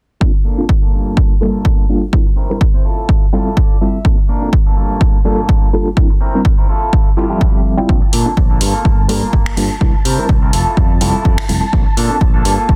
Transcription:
0.20 A#3 C4 D4 F4 A4, kick
0.34 muted clean electric guitar stroke
0.45 A#3 D4 A4
0.58 A#3 C4 D4 F4 A4
0.69 kick
0.82 A#3 D4 A4
0.93 G2 A#3 F4 A4
1.17 kick
1.41 G2 G3 A#3 D4 F4 A4
1.65 kick
1.89 G3 A#3 D4 F4 A4
2.13 G3 C4 D4 E4 A#4, kick
2.26 muted clean electric guitar stroke
2.36 C4 E4 A#4
2.50 G3 C4 D4 E4 A#4
2.61 kick
2.74 C4 E4 C5
2.85 E4 F4 A4
3.09 kick
3.33 G3 C4 E4 F4 A4
3.57 kick
3.81 G3 C4 E4 F4 A4 E5
4.05 A#3 C4 D4 F4 A4, kick
4.18 muted clean electric guitar stroke
4.29 A#3 D4 A#4
4.42 A#3 C4 D4 F4 A4
4.53 kick
4.66 A#3 D4 A4
4.77 G2 A#3 F4 A4
5.01 kick
5.25 G2 G3 A#3 D4 F4 A4
5.49 kick
5.73 G3 A#3 D4 F4 A4
5.97 G3 C4 D4 E4 A#4, kick
6.10 muted clean electric guitar stroke
6.21 C4 E4 A#4
6.34 G3 C4 D4 E4 A#4
6.45 kick
6.58 C4 E4 A#4
6.69 E4 F4 A4
6.93 kick
7.17 G3 C4 E4 F4 G4 A4
7.30 F3 G3 C4 A4 E5
7.41 kick
7.77 G3 C4 E4 F4 G4
7.88 A#1 A#3 C4 D4 F4 A4 A5, kick
8.02 muted clean electric guitar stroke
8.12 A#2 A#3 D4 A4, open hi-hat
8.26 A#3 C4 D4 F4 A4
8.37 A#1, kick
8.50 A#3 D4 A4
8.61 G2 A#3 F4 A4, open hi-hat
8.85 G1, kick
9.09 G2 G3 A#3 D4 F4 A4 A#4, open hi-hat
9.23 muted fingered electric bass stroke
9.33 G1, kick
9.46 finger snap
9.57 G2 G3 A#3 D4 F4 A4, open hi-hat
9.81 C2 G3 C4 D4 E4 A#4, kick
9.94 muted clean electric guitar stroke
10.05 C3 C4 E4 A#4, open hi-hat
10.18 G3 C4 D4 E4 A#4, muted fingered electric bass stroke
10.29 C2, kick
10.42 C4 E4 A#4
10.53 F1 E4 F4 A4, open hi-hat
10.77 F2, kick
11.01 F1 G3 C4 E4 F4 A4, open hi-hat
11.14 muted fingered electric bass stroke
11.25 F2, kick
11.38 finger snap
11.48 F1 G3 C4 E4 F4 A4, open hi-hat
11.73 A#1 A#3 C4 D4 F4 A4, kick
11.86 muted clean electric guitar stroke
11.97 A#2 A#3 D4 A4, open hi-hat
12.09 A#3 C4 D4 F4 A4
12.21 A#1, kick
12.34 A#3 D4 A4
12.45 G2 A#3 F4 A4, open hi-hat
12.69 G1, kick

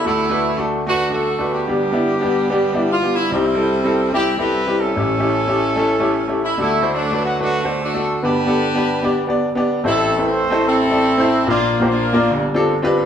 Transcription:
0.04 D2 D3 A3 D4 E4 F#4 A4
0.29 A3 D4 F#4 B4
0.57 A3 D4 F#4 A4
0.86 A3 D4 F#4 B4
1.10 A3 D4 F#4 A4
1.39 A3 D4 F#4 B4
1.52 B3 D4 G4
1.67 G1 G2 G3 B3 D4 G4
1.91 G3 B3 D4 E4
2.21 G3 B3 D4 G4
2.50 G3 B3 D4 G4
2.73 G3 B3 D4 E4
2.92 F4
3.02 G3 B3 D4 G4
3.15 E4
3.30 C2 C3 G3 C4 E4 G4
3.55 G3 C4 E4 A4
3.84 G3 C4 E4 A4
4.12 G3 C4 E4 G4
4.37 G3 C4 E4 G4 A4 B4
4.66 G3 C4 E4 G4
4.79 C#4 E4 A4
4.96 A1 A2 A3 C#4 E4 G4
5.18 A3 C#4 E4 G4
5.47 A3 C#4 E4 G4
5.76 A3 C#4 E4 A4
6.00 A3 C#4 E4 G4
6.28 A3 C#4 E4 G4
6.44 E4
6.58 D2 D3 A3 D4 E4 F#4 A4
6.81 A3 D4 F#4 C5
6.93 F#3 A3 D4
7.11 A3 D4 F#4 B4
7.25 F#4
7.40 A3 D4 F#4 B4
7.63 A3 D4 F#4 C5
7.82 D4 F#4 A4
7.93 A3 D4 F#4 A4
8.23 G1 G2 B3 D4 G4 B4
8.46 B3 D4 G4 A4
8.74 B3 D4 G4 B4
9.03 B3 D4 G4 D5
9.27 B3 D4 G4 D5
9.55 B3 D4 G4 D5
9.84 A1 A2 A3 C4 E4 A4 C5
9.88 A4
10.17 A3 C4 E4 A4 B4
10.27 E4 A4 C5
10.50 A3 C4 E4 A4 C5
10.68 C4 E4 A4
10.90 A3 C4 E4 A4 D5
11.18 A3 C4 E4 A4 C5
11.47 A#1 A#2 A#3 D4 F4 A#4 D5
11.80 A#3 D4 F4 G4 A#4 C5
11.89 A#3 D4 F4
12.13 A#3 D4 F4 A#4 D5
12.31 G1 G2
12.54 C4 D4 F4 G4 A4
12.82 C4 D4 F4 G4 B4

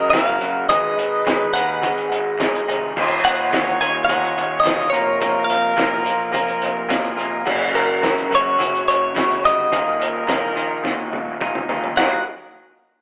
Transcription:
Already playing: F#1 F#2 C#3 F#3 A#4
0.10 F#1 F#2 C#3 F#3 F5, kick, clap, closed hi-hat
0.15 snare
0.28 closed hi-hat
0.40 F#1 F#2 C#3 F#3, closed hi-hat
0.68 G#1 G#2 D#3 G#3 B4 D#5, kick, closed hi-hat
0.97 G#1, closed hi-hat
1.26 G#1 G#2 D#3 G#3, kick, snare, clap, closed hi-hat
1.54 D#2 G#2 D#3 G#3 F#5, closed hi-hat
1.82 G#1 G#2 D#3 G#3, kick, clap, closed hi-hat
1.98 closed hi-hat
2.11 G#1, closed hi-hat
2.38 G#1 G#2 D#3 G#3, kick, snare, clap, closed hi-hat
2.55 closed hi-hat
2.68 F1 G#2 D#3 G#3, closed hi-hat
2.94 D#1 D#2 A#2 D#3 C#5, kick, crash
3.24 D#1 F#5, closed hi-hat
3.52 D#1 D#2 A#2 D#3, kick, snare, clap, closed hi-hat
3.67 closed hi-hat
3.80 D#1 D#2 A#2 D#3 G#5, closed hi-hat
4.05 F#5
4.09 D#1 D#2 A#2 D#3, kick, closed hi-hat
4.24 closed hi-hat
4.37 D#1, closed hi-hat
4.60 D#5
4.64 E1 D#2 A#2 D#3, kick, snare, clap, closed hi-hat
4.80 closed hi-hat
4.90 F1 A#2 F3 A#3 A#4 C#5
4.94 closed hi-hat
5.20 F1 A#2 F3 A#3, kick, closed hi-hat
5.44 F5
5.49 F1, closed hi-hat
5.76 F1 A#2 F3 A#3, kick, snare, clap, closed hi-hat
6.04 B1 A#2 F3 A#3, closed hi-hat
6.32 F1 A#2 F3 A#3 A#4, kick, closed hi-hat
6.48 closed hi-hat
6.62 F1, closed hi-hat
6.89 F1 A#2 F3 A#3 G#4, kick, snare, clap, closed hi-hat
7.05 closed hi-hat
7.16 F1 A#2 F3 A#3, closed hi-hat
7.45 F#1 F#2 C#3 F#3 F#4, kick, crash
7.74 F#1 A#4, closed hi-hat
8.02 F#1 F#2 C#3 F#3, kick, snare, clap, closed hi-hat
8.18 closed hi-hat
8.30 F#1 F#2 C#3 F#3, closed hi-hat
8.35 C#5
8.58 F#1 F#2 C#3 F#3, kick, closed hi-hat
8.75 closed hi-hat
8.87 F#1 C#5, closed hi-hat
9.14 F#1 F#2 C#3 F#3, kick, snare, clap, closed hi-hat
9.31 closed hi-hat
9.43 F1 F#2 C#3 F#3 D#5, closed hi-hat
9.72 D#1 D#2 A#2 D#3 A#4, kick, closed hi-hat
9.99 D#1, closed hi-hat
10.27 D#1 D#2 A#2 D#3, kick, snare, clap, closed hi-hat
10.55 A#1 D#2 A#2 D#3, closed hi-hat
10.84 D#1 D#2 A#2 D#3 F#4, kick, snare, clap
11.11 D#1, high tom
11.40 D#1 D#2 A#2 D#3, kick, clap, mid tom
11.55 mid tom
11.68 D#1 D#2 A#2 D#3, floor tom
11.84 floor tom
11.96 D#1 D#2 A#2 D#3 F#3 A#3 D#4 F#4 F#5, snare, clap, crash

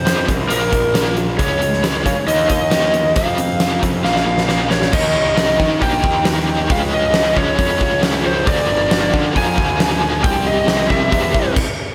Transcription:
Already playing: F2 C5
0.05 F2 C3 F3, snare, closed hi-hat
0.27 C2 F2 C3, kick, closed hi-hat
0.49 A#1 A#2 F3 A#3 A#4, closed hi-hat
0.72 A#1 A#2 F3, kick, closed hi-hat
0.94 A#2 F3 A#3, snare, closed hi-hat
1.06 snare
1.17 A#2 F3, closed hi-hat
1.38 C#2 C#3 G#3 C#4 C#5, kick, closed hi-hat
1.61 C#3 G#3, closed hi-hat
1.73 snare
1.83 C#3 G#3 C#4, snare, closed hi-hat
2.06 C#3 G#3, kick, closed hi-hat
2.27 D#2 D#3 A#3 D#4 D#5, closed hi-hat
2.49 D#2 D#3 A#3 D#5, kick, closed hi-hat
2.70 D#3 A#3 D#4, snare, closed hi-hat
2.93 D#3 A#3, closed hi-hat
3.16 F2 C3 F3 F5, kick, closed hi-hat
3.38 F2 C3, closed hi-hat
3.60 F2 C3 F3, snare, closed hi-hat
3.83 F2 C3, kick, closed hi-hat
4.04 A#1 A#2 F3 A#3 F5, snare
4.16 snare
4.26 A#1 A#2 F3
4.38 snare
4.48 A#2 F3 A#3, snare
4.70 A#2 F3 C#5, snare
4.82 snare
4.92 D#2 D#3 A#3 D#4 D#5, kick, crash
5.15 C2
5.37 D#3 A#3 D#4, snare, open hi-hat
5.59 D#3 A#3 D#4, kick, snare
5.81 A#1 D#3 A#3 D#4 G5, kick, open hi-hat
6.04 D#2, kick
6.24 D#3 A#3 D#4, snare, open hi-hat
6.48 D#3 A#3 D#4
6.70 C#2 C#3 G#3 C#4 F5, kick, open hi-hat
6.94 D#5
7.14 C#3 G#3 C#4, snare, open hi-hat
7.35 C#2 C#3 G#3 C#4 C#5, kick
7.57 F2 C#3 G#3 C#4, kick, open hi-hat
7.81 C#2, kick
8.02 C#3 G#3 C#4, snare, open hi-hat
8.24 C#3 G#3 C#4 C5
8.46 D2 A#2 F3 A#3 D5, kick, open hi-hat
8.69 G1
8.91 A#2 F3 A#3, snare, open hi-hat
9.13 A#2 D3 F3 A#3, kick
9.35 F2 A#2 F3 A#3 G#5, kick, open hi-hat
9.58 D2, kick
9.79 A#2 F3 A#3, snare, open hi-hat
9.92 snare
10.01 A#2 F3 A#3
10.22 C2 C3 G3 C4 G5, kick, open hi-hat
10.47 D#5
10.67 C3 G3 C4, snare, open hi-hat
10.89 C2 C3 G3 C4 E5, kick, snare
11.11 E2 C3 G3 C4, kick, open hi-hat
11.34 C2, kick
11.56 kick, crash

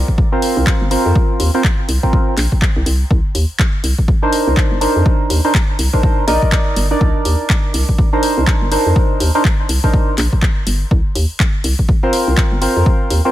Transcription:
Already playing: C4 F4 A#4 D5
0.08 kick
0.18 kick
0.32 C4 F4 A#4 C5
0.42 open hi-hat
0.57 C2
0.67 kick, clap
0.81 G1
0.91 C4 F4 A#4 C5, open hi-hat
1.06 F2
1.16 kick
1.40 D#2, open hi-hat
1.54 C4 F4 A#4 C5
1.64 kick, clap
1.89 C2, open hi-hat
2.03 C4 F4 A#4 C5, kick
2.13 kick
2.37 A#1, clap, open hi-hat
2.52 kick
2.62 kick, clap
2.76 C2
2.86 C2, open hi-hat
3.11 C2, kick
3.35 D#2, open hi-hat
3.59 kick, clap
3.84 C2, open hi-hat
3.98 kick
4.08 kick
4.22 D4 D#4 A#4 C5
4.33 open hi-hat
4.47 C2
4.57 kick, clap
4.72 G1
4.81 D4 D#4 A#4 C5, open hi-hat
4.96 F2
5.06 kick
5.30 D#2, open hi-hat
5.45 D4 D#4 A#4 C5
5.55 kick, clap
5.79 C2, open hi-hat
5.93 D4 D#4 A#4 C5, kick
6.03 kick
6.27 A#1 D#4 A#4 D5 D#5, open hi-hat
6.42 kick
6.52 kick, clap
6.76 G1, open hi-hat
6.91 D4 D#4 A#4 D5
7.01 C2, kick
7.25 D#2, open hi-hat
7.50 kick, clap
7.74 C2, open hi-hat
7.89 kick
7.99 kick
8.13 D4 D#4 A#4 C5
8.23 open hi-hat
8.38 C2
8.47 kick, clap
8.62 G1
8.71 D4 D#4 A#4 C5, open hi-hat
8.86 F2
8.96 kick
9.20 D#2, open hi-hat
9.35 D4 D#4 A#4 C5
9.45 kick, clap
9.69 C2, open hi-hat
9.84 D4 D#4 A#4 C5, kick
9.94 kick
10.18 A#1, clap, open hi-hat
10.33 kick
10.42 kick, clap
10.67 G1, open hi-hat
10.91 C2, kick
11.15 D#2, open hi-hat
11.40 kick, clap
11.64 C2, open hi-hat
11.79 kick
11.89 kick
12.03 C4 F4 A#4 C5
12.13 open hi-hat
12.28 C2
12.37 kick, clap
12.52 G1
12.61 C4 F4 A#4 C5, open hi-hat
12.76 F2
12.86 kick
13.10 D#2, open hi-hat
13.25 C4 F4 A#4 C5

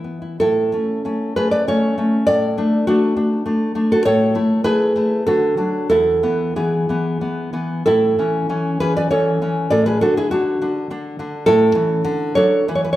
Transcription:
Already playing: E3 E4
0.04 B3
0.22 E4
0.40 A2 E4 A4
0.72 A3 C#4
1.05 A3 C#4
1.36 A3 C#4 G#4 B4
1.51 B4 D5
1.68 A3 C#4 A4 C#5
1.98 A3 C#4
2.27 A2 A4 D5
2.58 A3 D4
2.87 A3 D4 F#4
3.16 A3 D4
3.46 A3 D4
3.75 A3 D4
3.92 F#4 A4
4.05 A2 A4 C#5
4.35 A3 E4
4.64 A3 E4 G#4 B4
4.96 A3 E4
5.27 D3 F#4 A4
5.57 F#3 D4
5.90 E2 E4 A4
6.23 E3 B3
6.56 E3 B3 E4 G#4
6.89 E3 B3
7.21 E3 B3
7.53 E3 B3
7.86 A2 E4 A4
8.19 E3 C#4
8.49 E3 C#4
8.80 E3 C#4 G#4 B4
8.97 B4 D5
9.11 E3 C#4 A4 C#5
9.42 E3 C#4
9.70 A2 A4 D5
9.86 G#4 B4
10.01 D3 D4 F#4 A4
10.17 E4 G#4
10.31 D3 D4 F#4
10.62 D3 D4
10.90 D3 D4
11.19 D3 D4
11.46 A2 E4 A4
11.75 E3 C#4
12.04 D3
12.35 F#3 D4 A4 C#5
12.68 E3 B4
12.75 C#5
12.84 B4
12.93 C#5

